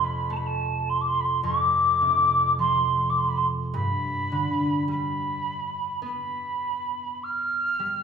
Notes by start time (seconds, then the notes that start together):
Already playing: F2 C3
0.04 B5
0.30 A3 A5
0.36 B5
0.46 A5
0.89 C6
1.01 D6
1.07 C6
1.20 B5
1.24 C6
1.43 F2 D6
2.01 C3
2.59 F3 C6
3.09 D6
3.18 C6
3.28 B5
3.36 C6
3.74 G2 B5
4.32 D3
4.88 G3 B5
6.02 B3 B5
7.23 F6
7.79 G3